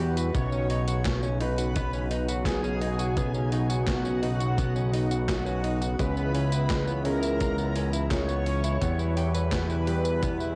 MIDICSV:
0, 0, Header, 1, 8, 480
1, 0, Start_track
1, 0, Key_signature, 5, "major"
1, 0, Tempo, 705882
1, 236, Time_signature, 4, 2, 24, 8
1, 7175, End_track
2, 0, Start_track
2, 0, Title_t, "String machine"
2, 0, Program_c, 0, 50
2, 0, Note_on_c, 0, 78, 88
2, 131, Note_off_c, 0, 78, 0
2, 235, Note_on_c, 0, 85, 106
2, 859, Note_off_c, 0, 85, 0
2, 955, Note_on_c, 0, 83, 99
2, 1580, Note_off_c, 0, 83, 0
2, 1675, Note_on_c, 0, 80, 101
2, 2539, Note_off_c, 0, 80, 0
2, 2636, Note_on_c, 0, 78, 104
2, 3500, Note_off_c, 0, 78, 0
2, 3596, Note_on_c, 0, 78, 88
2, 3973, Note_off_c, 0, 78, 0
2, 4075, Note_on_c, 0, 83, 106
2, 4700, Note_off_c, 0, 83, 0
2, 4794, Note_on_c, 0, 82, 99
2, 5419, Note_off_c, 0, 82, 0
2, 5514, Note_on_c, 0, 85, 91
2, 6379, Note_off_c, 0, 85, 0
2, 6472, Note_on_c, 0, 83, 107
2, 7175, Note_off_c, 0, 83, 0
2, 7175, End_track
3, 0, Start_track
3, 0, Title_t, "Supersaw synth"
3, 0, Program_c, 1, 81
3, 0, Note_on_c, 1, 66, 91
3, 132, Note_off_c, 1, 66, 0
3, 234, Note_on_c, 1, 73, 110
3, 859, Note_off_c, 1, 73, 0
3, 954, Note_on_c, 1, 71, 105
3, 1579, Note_off_c, 1, 71, 0
3, 1675, Note_on_c, 1, 68, 104
3, 2539, Note_off_c, 1, 68, 0
3, 2634, Note_on_c, 1, 66, 105
3, 3499, Note_off_c, 1, 66, 0
3, 3595, Note_on_c, 1, 66, 93
3, 3973, Note_off_c, 1, 66, 0
3, 4075, Note_on_c, 1, 71, 111
3, 4700, Note_off_c, 1, 71, 0
3, 4794, Note_on_c, 1, 70, 107
3, 5419, Note_off_c, 1, 70, 0
3, 5514, Note_on_c, 1, 73, 104
3, 6379, Note_off_c, 1, 73, 0
3, 6475, Note_on_c, 1, 71, 104
3, 7175, Note_off_c, 1, 71, 0
3, 7175, End_track
4, 0, Start_track
4, 0, Title_t, "Clean electric guitar"
4, 0, Program_c, 2, 27
4, 0, Note_on_c, 2, 67, 84
4, 103, Note_off_c, 2, 67, 0
4, 115, Note_on_c, 2, 71, 79
4, 223, Note_off_c, 2, 71, 0
4, 236, Note_on_c, 2, 59, 80
4, 344, Note_off_c, 2, 59, 0
4, 356, Note_on_c, 2, 61, 75
4, 470, Note_off_c, 2, 61, 0
4, 475, Note_on_c, 2, 63, 76
4, 583, Note_off_c, 2, 63, 0
4, 595, Note_on_c, 2, 66, 78
4, 703, Note_off_c, 2, 66, 0
4, 715, Note_on_c, 2, 59, 85
4, 823, Note_off_c, 2, 59, 0
4, 836, Note_on_c, 2, 61, 79
4, 950, Note_off_c, 2, 61, 0
4, 955, Note_on_c, 2, 63, 76
4, 1063, Note_off_c, 2, 63, 0
4, 1076, Note_on_c, 2, 66, 78
4, 1183, Note_off_c, 2, 66, 0
4, 1195, Note_on_c, 2, 59, 80
4, 1303, Note_off_c, 2, 59, 0
4, 1316, Note_on_c, 2, 61, 74
4, 1430, Note_off_c, 2, 61, 0
4, 1434, Note_on_c, 2, 63, 81
4, 1543, Note_off_c, 2, 63, 0
4, 1555, Note_on_c, 2, 66, 78
4, 1663, Note_off_c, 2, 66, 0
4, 1676, Note_on_c, 2, 59, 84
4, 1784, Note_off_c, 2, 59, 0
4, 1795, Note_on_c, 2, 61, 76
4, 1910, Note_off_c, 2, 61, 0
4, 1915, Note_on_c, 2, 63, 84
4, 2023, Note_off_c, 2, 63, 0
4, 2034, Note_on_c, 2, 66, 81
4, 2143, Note_off_c, 2, 66, 0
4, 2153, Note_on_c, 2, 59, 85
4, 2262, Note_off_c, 2, 59, 0
4, 2274, Note_on_c, 2, 61, 70
4, 2389, Note_off_c, 2, 61, 0
4, 2395, Note_on_c, 2, 63, 75
4, 2503, Note_off_c, 2, 63, 0
4, 2513, Note_on_c, 2, 66, 73
4, 2622, Note_off_c, 2, 66, 0
4, 2634, Note_on_c, 2, 59, 82
4, 2743, Note_off_c, 2, 59, 0
4, 2754, Note_on_c, 2, 61, 75
4, 2869, Note_off_c, 2, 61, 0
4, 2874, Note_on_c, 2, 63, 72
4, 2983, Note_off_c, 2, 63, 0
4, 2993, Note_on_c, 2, 66, 75
4, 3102, Note_off_c, 2, 66, 0
4, 3113, Note_on_c, 2, 59, 79
4, 3222, Note_off_c, 2, 59, 0
4, 3234, Note_on_c, 2, 61, 74
4, 3349, Note_off_c, 2, 61, 0
4, 3355, Note_on_c, 2, 63, 76
4, 3463, Note_off_c, 2, 63, 0
4, 3476, Note_on_c, 2, 66, 74
4, 3584, Note_off_c, 2, 66, 0
4, 3596, Note_on_c, 2, 59, 86
4, 3704, Note_off_c, 2, 59, 0
4, 3714, Note_on_c, 2, 61, 76
4, 3829, Note_off_c, 2, 61, 0
4, 3835, Note_on_c, 2, 63, 76
4, 3943, Note_off_c, 2, 63, 0
4, 3954, Note_on_c, 2, 66, 78
4, 4063, Note_off_c, 2, 66, 0
4, 4075, Note_on_c, 2, 56, 81
4, 4183, Note_off_c, 2, 56, 0
4, 4194, Note_on_c, 2, 59, 72
4, 4309, Note_off_c, 2, 59, 0
4, 4315, Note_on_c, 2, 61, 73
4, 4423, Note_off_c, 2, 61, 0
4, 4434, Note_on_c, 2, 64, 74
4, 4543, Note_off_c, 2, 64, 0
4, 4553, Note_on_c, 2, 56, 85
4, 4662, Note_off_c, 2, 56, 0
4, 4674, Note_on_c, 2, 59, 73
4, 4789, Note_off_c, 2, 59, 0
4, 4793, Note_on_c, 2, 61, 73
4, 4902, Note_off_c, 2, 61, 0
4, 4913, Note_on_c, 2, 64, 80
4, 5022, Note_off_c, 2, 64, 0
4, 5034, Note_on_c, 2, 56, 79
4, 5143, Note_off_c, 2, 56, 0
4, 5154, Note_on_c, 2, 59, 78
4, 5269, Note_off_c, 2, 59, 0
4, 5273, Note_on_c, 2, 61, 79
4, 5382, Note_off_c, 2, 61, 0
4, 5394, Note_on_c, 2, 64, 78
4, 5503, Note_off_c, 2, 64, 0
4, 5513, Note_on_c, 2, 56, 85
4, 5622, Note_off_c, 2, 56, 0
4, 5633, Note_on_c, 2, 59, 76
4, 5748, Note_off_c, 2, 59, 0
4, 5755, Note_on_c, 2, 61, 84
4, 5863, Note_off_c, 2, 61, 0
4, 5874, Note_on_c, 2, 64, 82
4, 5983, Note_off_c, 2, 64, 0
4, 5994, Note_on_c, 2, 59, 82
4, 6102, Note_off_c, 2, 59, 0
4, 6114, Note_on_c, 2, 64, 71
4, 6229, Note_off_c, 2, 64, 0
4, 6235, Note_on_c, 2, 67, 74
4, 6343, Note_off_c, 2, 67, 0
4, 6354, Note_on_c, 2, 71, 74
4, 6463, Note_off_c, 2, 71, 0
4, 6474, Note_on_c, 2, 59, 84
4, 6583, Note_off_c, 2, 59, 0
4, 6593, Note_on_c, 2, 64, 79
4, 6709, Note_off_c, 2, 64, 0
4, 6714, Note_on_c, 2, 67, 80
4, 6823, Note_off_c, 2, 67, 0
4, 6833, Note_on_c, 2, 71, 76
4, 6942, Note_off_c, 2, 71, 0
4, 6954, Note_on_c, 2, 59, 85
4, 7063, Note_off_c, 2, 59, 0
4, 7074, Note_on_c, 2, 64, 72
4, 7175, Note_off_c, 2, 64, 0
4, 7175, End_track
5, 0, Start_track
5, 0, Title_t, "Grand piano"
5, 0, Program_c, 3, 0
5, 0, Note_on_c, 3, 55, 75
5, 0, Note_on_c, 3, 59, 69
5, 0, Note_on_c, 3, 64, 69
5, 0, Note_on_c, 3, 71, 86
5, 207, Note_off_c, 3, 55, 0
5, 207, Note_off_c, 3, 59, 0
5, 207, Note_off_c, 3, 64, 0
5, 207, Note_off_c, 3, 71, 0
5, 236, Note_on_c, 3, 47, 80
5, 236, Note_on_c, 3, 59, 74
5, 236, Note_on_c, 3, 63, 74
5, 236, Note_on_c, 3, 66, 75
5, 236, Note_on_c, 3, 71, 91
5, 237, Note_on_c, 3, 61, 79
5, 927, Note_off_c, 3, 47, 0
5, 927, Note_off_c, 3, 59, 0
5, 927, Note_off_c, 3, 61, 0
5, 927, Note_off_c, 3, 63, 0
5, 927, Note_off_c, 3, 66, 0
5, 927, Note_off_c, 3, 71, 0
5, 955, Note_on_c, 3, 63, 71
5, 955, Note_on_c, 3, 66, 70
5, 956, Note_on_c, 3, 47, 76
5, 956, Note_on_c, 3, 59, 68
5, 956, Note_on_c, 3, 61, 73
5, 956, Note_on_c, 3, 71, 83
5, 2127, Note_off_c, 3, 47, 0
5, 2127, Note_off_c, 3, 59, 0
5, 2127, Note_off_c, 3, 61, 0
5, 2127, Note_off_c, 3, 63, 0
5, 2127, Note_off_c, 3, 66, 0
5, 2127, Note_off_c, 3, 71, 0
5, 2155, Note_on_c, 3, 61, 74
5, 2156, Note_on_c, 3, 47, 78
5, 2156, Note_on_c, 3, 59, 76
5, 2156, Note_on_c, 3, 63, 74
5, 2156, Note_on_c, 3, 66, 76
5, 2156, Note_on_c, 3, 71, 94
5, 2847, Note_off_c, 3, 47, 0
5, 2847, Note_off_c, 3, 59, 0
5, 2847, Note_off_c, 3, 61, 0
5, 2847, Note_off_c, 3, 63, 0
5, 2847, Note_off_c, 3, 66, 0
5, 2847, Note_off_c, 3, 71, 0
5, 2876, Note_on_c, 3, 63, 69
5, 2876, Note_on_c, 3, 71, 80
5, 2877, Note_on_c, 3, 47, 75
5, 2877, Note_on_c, 3, 59, 70
5, 2877, Note_on_c, 3, 61, 70
5, 2877, Note_on_c, 3, 66, 70
5, 4047, Note_off_c, 3, 47, 0
5, 4047, Note_off_c, 3, 59, 0
5, 4047, Note_off_c, 3, 61, 0
5, 4047, Note_off_c, 3, 63, 0
5, 4047, Note_off_c, 3, 66, 0
5, 4047, Note_off_c, 3, 71, 0
5, 4075, Note_on_c, 3, 49, 79
5, 4075, Note_on_c, 3, 56, 76
5, 4075, Note_on_c, 3, 61, 77
5, 4075, Note_on_c, 3, 64, 73
5, 4075, Note_on_c, 3, 68, 92
5, 4076, Note_on_c, 3, 59, 75
5, 4767, Note_off_c, 3, 49, 0
5, 4767, Note_off_c, 3, 56, 0
5, 4767, Note_off_c, 3, 59, 0
5, 4767, Note_off_c, 3, 61, 0
5, 4767, Note_off_c, 3, 64, 0
5, 4767, Note_off_c, 3, 68, 0
5, 4795, Note_on_c, 3, 49, 74
5, 4795, Note_on_c, 3, 56, 66
5, 4795, Note_on_c, 3, 61, 69
5, 4795, Note_on_c, 3, 64, 69
5, 4796, Note_on_c, 3, 59, 68
5, 4796, Note_on_c, 3, 68, 83
5, 5966, Note_off_c, 3, 64, 0
5, 5967, Note_off_c, 3, 49, 0
5, 5967, Note_off_c, 3, 56, 0
5, 5967, Note_off_c, 3, 59, 0
5, 5967, Note_off_c, 3, 61, 0
5, 5967, Note_off_c, 3, 68, 0
5, 5995, Note_on_c, 3, 55, 79
5, 5995, Note_on_c, 3, 59, 72
5, 5995, Note_on_c, 3, 64, 74
5, 5995, Note_on_c, 3, 67, 75
5, 5995, Note_on_c, 3, 71, 92
5, 6686, Note_off_c, 3, 59, 0
5, 6687, Note_off_c, 3, 55, 0
5, 6687, Note_off_c, 3, 64, 0
5, 6687, Note_off_c, 3, 67, 0
5, 6687, Note_off_c, 3, 71, 0
5, 6714, Note_on_c, 3, 55, 76
5, 6714, Note_on_c, 3, 59, 70
5, 6714, Note_on_c, 3, 64, 66
5, 6714, Note_on_c, 3, 71, 84
5, 7175, Note_off_c, 3, 55, 0
5, 7175, Note_off_c, 3, 59, 0
5, 7175, Note_off_c, 3, 64, 0
5, 7175, Note_off_c, 3, 71, 0
5, 7175, End_track
6, 0, Start_track
6, 0, Title_t, "Analog synth pad"
6, 0, Program_c, 4, 89
6, 0, Note_on_c, 4, 47, 87
6, 0, Note_on_c, 4, 52, 77
6, 0, Note_on_c, 4, 55, 80
6, 0, Note_on_c, 4, 64, 76
6, 0, Note_on_c, 4, 71, 94
6, 210, Note_off_c, 4, 52, 0
6, 216, Note_off_c, 4, 47, 0
6, 216, Note_off_c, 4, 55, 0
6, 216, Note_off_c, 4, 64, 0
6, 216, Note_off_c, 4, 71, 0
6, 235, Note_on_c, 4, 49, 82
6, 235, Note_on_c, 4, 63, 80
6, 235, Note_on_c, 4, 66, 97
6, 236, Note_on_c, 4, 54, 80
6, 236, Note_on_c, 4, 59, 79
6, 4048, Note_off_c, 4, 49, 0
6, 4048, Note_off_c, 4, 63, 0
6, 4048, Note_off_c, 4, 66, 0
6, 4049, Note_off_c, 4, 54, 0
6, 4076, Note_on_c, 4, 49, 82
6, 4076, Note_on_c, 4, 56, 80
6, 4077, Note_on_c, 4, 52, 83
6, 4077, Note_on_c, 4, 64, 98
6, 5969, Note_off_c, 4, 59, 0
6, 5977, Note_off_c, 4, 49, 0
6, 5977, Note_off_c, 4, 52, 0
6, 5977, Note_off_c, 4, 56, 0
6, 5977, Note_off_c, 4, 64, 0
6, 5995, Note_on_c, 4, 55, 78
6, 5995, Note_on_c, 4, 71, 95
6, 5996, Note_on_c, 4, 47, 88
6, 5996, Note_on_c, 4, 52, 78
6, 5996, Note_on_c, 4, 64, 78
6, 7175, Note_off_c, 4, 47, 0
6, 7175, Note_off_c, 4, 52, 0
6, 7175, Note_off_c, 4, 55, 0
6, 7175, Note_off_c, 4, 64, 0
6, 7175, Note_off_c, 4, 71, 0
6, 7175, End_track
7, 0, Start_track
7, 0, Title_t, "Analog synth bass"
7, 0, Program_c, 5, 38
7, 0, Note_on_c, 5, 40, 94
7, 213, Note_off_c, 5, 40, 0
7, 235, Note_on_c, 5, 35, 92
7, 4052, Note_off_c, 5, 35, 0
7, 4076, Note_on_c, 5, 37, 96
7, 5972, Note_off_c, 5, 37, 0
7, 5994, Note_on_c, 5, 40, 94
7, 7175, Note_off_c, 5, 40, 0
7, 7175, End_track
8, 0, Start_track
8, 0, Title_t, "Drums"
8, 116, Note_on_c, 9, 42, 71
8, 116, Note_on_c, 9, 54, 59
8, 184, Note_off_c, 9, 42, 0
8, 184, Note_off_c, 9, 54, 0
8, 235, Note_on_c, 9, 36, 120
8, 236, Note_on_c, 9, 42, 90
8, 236, Note_on_c, 9, 54, 49
8, 303, Note_off_c, 9, 36, 0
8, 304, Note_off_c, 9, 42, 0
8, 304, Note_off_c, 9, 54, 0
8, 356, Note_on_c, 9, 54, 29
8, 424, Note_off_c, 9, 54, 0
8, 475, Note_on_c, 9, 46, 75
8, 543, Note_off_c, 9, 46, 0
8, 596, Note_on_c, 9, 42, 71
8, 596, Note_on_c, 9, 54, 60
8, 664, Note_off_c, 9, 42, 0
8, 664, Note_off_c, 9, 54, 0
8, 716, Note_on_c, 9, 38, 123
8, 716, Note_on_c, 9, 39, 94
8, 716, Note_on_c, 9, 42, 96
8, 716, Note_on_c, 9, 54, 47
8, 719, Note_on_c, 9, 36, 113
8, 784, Note_off_c, 9, 38, 0
8, 784, Note_off_c, 9, 39, 0
8, 784, Note_off_c, 9, 42, 0
8, 784, Note_off_c, 9, 54, 0
8, 787, Note_off_c, 9, 36, 0
8, 835, Note_on_c, 9, 54, 30
8, 903, Note_off_c, 9, 54, 0
8, 955, Note_on_c, 9, 46, 76
8, 1023, Note_off_c, 9, 46, 0
8, 1075, Note_on_c, 9, 42, 68
8, 1075, Note_on_c, 9, 54, 57
8, 1143, Note_off_c, 9, 42, 0
8, 1143, Note_off_c, 9, 54, 0
8, 1194, Note_on_c, 9, 42, 99
8, 1194, Note_on_c, 9, 54, 50
8, 1197, Note_on_c, 9, 36, 118
8, 1262, Note_off_c, 9, 42, 0
8, 1262, Note_off_c, 9, 54, 0
8, 1265, Note_off_c, 9, 36, 0
8, 1314, Note_on_c, 9, 54, 30
8, 1382, Note_off_c, 9, 54, 0
8, 1434, Note_on_c, 9, 46, 77
8, 1502, Note_off_c, 9, 46, 0
8, 1554, Note_on_c, 9, 42, 68
8, 1554, Note_on_c, 9, 54, 57
8, 1622, Note_off_c, 9, 42, 0
8, 1622, Note_off_c, 9, 54, 0
8, 1667, Note_on_c, 9, 36, 124
8, 1674, Note_on_c, 9, 38, 121
8, 1674, Note_on_c, 9, 39, 90
8, 1674, Note_on_c, 9, 42, 93
8, 1674, Note_on_c, 9, 54, 48
8, 1735, Note_off_c, 9, 36, 0
8, 1742, Note_off_c, 9, 38, 0
8, 1742, Note_off_c, 9, 39, 0
8, 1742, Note_off_c, 9, 42, 0
8, 1742, Note_off_c, 9, 54, 0
8, 1795, Note_on_c, 9, 54, 30
8, 1863, Note_off_c, 9, 54, 0
8, 1914, Note_on_c, 9, 46, 76
8, 1982, Note_off_c, 9, 46, 0
8, 2034, Note_on_c, 9, 42, 69
8, 2034, Note_on_c, 9, 54, 59
8, 2102, Note_off_c, 9, 42, 0
8, 2102, Note_off_c, 9, 54, 0
8, 2154, Note_on_c, 9, 42, 89
8, 2154, Note_on_c, 9, 54, 52
8, 2155, Note_on_c, 9, 36, 117
8, 2222, Note_off_c, 9, 42, 0
8, 2222, Note_off_c, 9, 54, 0
8, 2223, Note_off_c, 9, 36, 0
8, 2274, Note_on_c, 9, 54, 31
8, 2342, Note_off_c, 9, 54, 0
8, 2394, Note_on_c, 9, 46, 73
8, 2462, Note_off_c, 9, 46, 0
8, 2515, Note_on_c, 9, 42, 69
8, 2515, Note_on_c, 9, 54, 62
8, 2583, Note_off_c, 9, 42, 0
8, 2583, Note_off_c, 9, 54, 0
8, 2633, Note_on_c, 9, 36, 123
8, 2634, Note_on_c, 9, 38, 122
8, 2634, Note_on_c, 9, 39, 89
8, 2634, Note_on_c, 9, 42, 93
8, 2634, Note_on_c, 9, 54, 50
8, 2701, Note_off_c, 9, 36, 0
8, 2702, Note_off_c, 9, 38, 0
8, 2702, Note_off_c, 9, 39, 0
8, 2702, Note_off_c, 9, 42, 0
8, 2702, Note_off_c, 9, 54, 0
8, 2754, Note_on_c, 9, 54, 30
8, 2822, Note_off_c, 9, 54, 0
8, 2875, Note_on_c, 9, 46, 80
8, 2943, Note_off_c, 9, 46, 0
8, 2995, Note_on_c, 9, 42, 65
8, 2995, Note_on_c, 9, 54, 62
8, 3063, Note_off_c, 9, 42, 0
8, 3063, Note_off_c, 9, 54, 0
8, 3114, Note_on_c, 9, 36, 127
8, 3115, Note_on_c, 9, 42, 95
8, 3115, Note_on_c, 9, 54, 53
8, 3182, Note_off_c, 9, 36, 0
8, 3183, Note_off_c, 9, 42, 0
8, 3183, Note_off_c, 9, 54, 0
8, 3236, Note_on_c, 9, 54, 30
8, 3304, Note_off_c, 9, 54, 0
8, 3356, Note_on_c, 9, 46, 79
8, 3424, Note_off_c, 9, 46, 0
8, 3475, Note_on_c, 9, 42, 64
8, 3475, Note_on_c, 9, 54, 61
8, 3543, Note_off_c, 9, 42, 0
8, 3543, Note_off_c, 9, 54, 0
8, 3594, Note_on_c, 9, 36, 117
8, 3596, Note_on_c, 9, 38, 118
8, 3596, Note_on_c, 9, 39, 89
8, 3596, Note_on_c, 9, 42, 92
8, 3596, Note_on_c, 9, 54, 50
8, 3662, Note_off_c, 9, 36, 0
8, 3664, Note_off_c, 9, 38, 0
8, 3664, Note_off_c, 9, 39, 0
8, 3664, Note_off_c, 9, 42, 0
8, 3664, Note_off_c, 9, 54, 0
8, 3715, Note_on_c, 9, 54, 30
8, 3783, Note_off_c, 9, 54, 0
8, 3835, Note_on_c, 9, 46, 76
8, 3903, Note_off_c, 9, 46, 0
8, 3956, Note_on_c, 9, 42, 66
8, 3956, Note_on_c, 9, 54, 60
8, 4024, Note_off_c, 9, 42, 0
8, 4024, Note_off_c, 9, 54, 0
8, 4075, Note_on_c, 9, 42, 86
8, 4075, Note_on_c, 9, 54, 52
8, 4076, Note_on_c, 9, 36, 125
8, 4143, Note_off_c, 9, 42, 0
8, 4143, Note_off_c, 9, 54, 0
8, 4144, Note_off_c, 9, 36, 0
8, 4196, Note_on_c, 9, 54, 31
8, 4264, Note_off_c, 9, 54, 0
8, 4315, Note_on_c, 9, 46, 78
8, 4383, Note_off_c, 9, 46, 0
8, 4435, Note_on_c, 9, 42, 69
8, 4435, Note_on_c, 9, 54, 63
8, 4503, Note_off_c, 9, 42, 0
8, 4503, Note_off_c, 9, 54, 0
8, 4555, Note_on_c, 9, 38, 120
8, 4555, Note_on_c, 9, 39, 92
8, 4555, Note_on_c, 9, 42, 88
8, 4555, Note_on_c, 9, 54, 52
8, 4558, Note_on_c, 9, 36, 127
8, 4623, Note_off_c, 9, 38, 0
8, 4623, Note_off_c, 9, 39, 0
8, 4623, Note_off_c, 9, 42, 0
8, 4623, Note_off_c, 9, 54, 0
8, 4626, Note_off_c, 9, 36, 0
8, 4675, Note_on_c, 9, 54, 31
8, 4743, Note_off_c, 9, 54, 0
8, 4794, Note_on_c, 9, 46, 80
8, 4862, Note_off_c, 9, 46, 0
8, 4914, Note_on_c, 9, 42, 67
8, 4914, Note_on_c, 9, 54, 64
8, 4982, Note_off_c, 9, 42, 0
8, 4982, Note_off_c, 9, 54, 0
8, 5035, Note_on_c, 9, 42, 93
8, 5035, Note_on_c, 9, 54, 54
8, 5038, Note_on_c, 9, 36, 122
8, 5103, Note_off_c, 9, 42, 0
8, 5103, Note_off_c, 9, 54, 0
8, 5106, Note_off_c, 9, 36, 0
8, 5155, Note_on_c, 9, 54, 32
8, 5223, Note_off_c, 9, 54, 0
8, 5274, Note_on_c, 9, 46, 82
8, 5342, Note_off_c, 9, 46, 0
8, 5394, Note_on_c, 9, 42, 66
8, 5394, Note_on_c, 9, 54, 63
8, 5462, Note_off_c, 9, 42, 0
8, 5462, Note_off_c, 9, 54, 0
8, 5514, Note_on_c, 9, 36, 109
8, 5514, Note_on_c, 9, 38, 110
8, 5514, Note_on_c, 9, 39, 88
8, 5514, Note_on_c, 9, 42, 90
8, 5514, Note_on_c, 9, 54, 53
8, 5582, Note_off_c, 9, 36, 0
8, 5582, Note_off_c, 9, 38, 0
8, 5582, Note_off_c, 9, 39, 0
8, 5582, Note_off_c, 9, 42, 0
8, 5582, Note_off_c, 9, 54, 0
8, 5635, Note_on_c, 9, 54, 32
8, 5703, Note_off_c, 9, 54, 0
8, 5755, Note_on_c, 9, 46, 77
8, 5823, Note_off_c, 9, 46, 0
8, 5874, Note_on_c, 9, 42, 64
8, 5874, Note_on_c, 9, 54, 66
8, 5942, Note_off_c, 9, 42, 0
8, 5942, Note_off_c, 9, 54, 0
8, 5994, Note_on_c, 9, 36, 105
8, 5995, Note_on_c, 9, 42, 85
8, 5995, Note_on_c, 9, 54, 52
8, 6062, Note_off_c, 9, 36, 0
8, 6063, Note_off_c, 9, 42, 0
8, 6063, Note_off_c, 9, 54, 0
8, 6115, Note_on_c, 9, 54, 31
8, 6183, Note_off_c, 9, 54, 0
8, 6235, Note_on_c, 9, 46, 78
8, 6303, Note_off_c, 9, 46, 0
8, 6355, Note_on_c, 9, 42, 67
8, 6355, Note_on_c, 9, 54, 67
8, 6423, Note_off_c, 9, 42, 0
8, 6423, Note_off_c, 9, 54, 0
8, 6473, Note_on_c, 9, 36, 121
8, 6475, Note_on_c, 9, 38, 116
8, 6475, Note_on_c, 9, 39, 96
8, 6475, Note_on_c, 9, 42, 87
8, 6475, Note_on_c, 9, 54, 54
8, 6541, Note_off_c, 9, 36, 0
8, 6543, Note_off_c, 9, 38, 0
8, 6543, Note_off_c, 9, 39, 0
8, 6543, Note_off_c, 9, 42, 0
8, 6543, Note_off_c, 9, 54, 0
8, 6594, Note_on_c, 9, 54, 31
8, 6662, Note_off_c, 9, 54, 0
8, 6713, Note_on_c, 9, 46, 81
8, 6781, Note_off_c, 9, 46, 0
8, 6834, Note_on_c, 9, 42, 64
8, 6834, Note_on_c, 9, 54, 64
8, 6902, Note_off_c, 9, 42, 0
8, 6902, Note_off_c, 9, 54, 0
8, 6954, Note_on_c, 9, 36, 101
8, 6954, Note_on_c, 9, 42, 92
8, 6954, Note_on_c, 9, 54, 56
8, 7022, Note_off_c, 9, 36, 0
8, 7022, Note_off_c, 9, 42, 0
8, 7022, Note_off_c, 9, 54, 0
8, 7074, Note_on_c, 9, 54, 32
8, 7142, Note_off_c, 9, 54, 0
8, 7175, End_track
0, 0, End_of_file